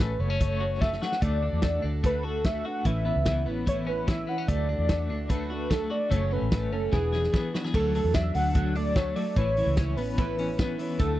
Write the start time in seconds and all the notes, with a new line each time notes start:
Already playing: A1 C#4 F#4 B4
0.00 A3
0.19 F#1 B3 C#5
0.30 C#4
0.40 A3, kick, closed hi-hat
0.60 F#4
0.81 A3 E5, kick, snare
0.93 snare
1.02 F#4 F#5, snare
1.12 snare
1.22 D2 D3 A3 D4 F#4 A4 D5, kick, closed hi-hat
1.43 D4 F#4 A4
1.53 E2
1.62 A3 D4 F#4 A4, kick, snare, closed hi-hat
1.83 D2 D4 F#4 A4
2.04 D3 A3 D4 F#4 A4 B4, kick, closed hi-hat
2.24 D4 F#4 A4
2.45 A3 D4 F#4 A4 E5, kick, snare, closed hi-hat
2.66 D4 F#4 A4 F#5
2.85 A1 E3 A3 C#4 E4 B4 E5, kick, closed hi-hat
3.05 B3 C#4 E4 B4
3.16 C#2
3.25 E3 A3 C#4 E4 B4, kick, snare, closed hi-hat
3.46 A1 B3 C#4 E4 B4
3.67 E3 A3 C#4 E4 B4 C#5, kick, closed hi-hat
3.87 C#4 E4 B4
3.91 C#4
4.07 E3 A3 C#4 E4 B4 E5, kick, snare, closed hi-hat
4.27 B3 C#4 E4 B4 F#5
4.38 C#4
4.48 D2 D3 F#3 A3 D4 F#4 D5, kick, closed hi-hat
4.70 A3 D4 F#4
4.78 E2
4.89 F#3 A3 D4 F#4, kick, snare, closed hi-hat
5.09 D2 A3 D4 F#4
5.30 D3 F#3 A3 D4 F#4 B4, kick, closed hi-hat
5.51 A3 D4 F#4
5.71 F#3 A3 D4 F#4 A4, kick, snare, closed hi-hat
5.91 A3 D4 F#4 D5
6.11 F#1 F#2 C#3 F#3 A3 C#4 F#4 C#5, kick, closed hi-hat
6.32 F#3 A3 C#4 F#4 B4
6.42 A1
6.51 F#3 A3 C#4 F#4, kick, snare, closed hi-hat
6.72 F#1 F#3 A3 C#4 F#4 A4
6.92 E1 E3 B3 D4 G#4, kick, snare
7.12 B3 D4 G#4, snare
7.24 snare
7.34 E3 B3 D4 G#4, kick, snare
7.54 B3 D4 F#4 G#4, snare
7.64 G#4, snare
7.74 D2 D3 F#3 A3 D4 A4, kick, crash
7.94 F#3 A3 D4 A4, open hi-hat
8.04 E2
8.14 F#3 A3 D4 A4 E5, kick, snare, closed hi-hat
8.34 D2 A3 D4 A4 F#5, open hi-hat
8.53 D3 F#3 A3 D4 A4, kick, closed hi-hat
8.75 A3 D4 A4 D5, open hi-hat
8.95 F#3 A3 D4 A4 C#5, kick, snare, closed hi-hat
9.16 F#3 A3 D4 A4 D5, open hi-hat
9.36 A1 E3 A3 C#4 E4 B4 C#5, kick, closed hi-hat
9.56 E3 C#4 E4 B4, open hi-hat
9.66 C#2
9.76 A3 C#4 E4 B4, kick, snare, closed hi-hat
9.96 A1 B3 C#4 E4 B4, open hi-hat
10.18 E3 A3 C#4 E4 B4, kick, closed hi-hat
10.37 C#4 E4 B4, open hi-hat
10.57 A3 B3 C#4 E4 B4, kick, snare, closed hi-hat
10.78 E3 C#4 E4 B4, open hi-hat
10.98 D2 D3 F#3 A3 D4 F#4 A4, kick, closed hi-hat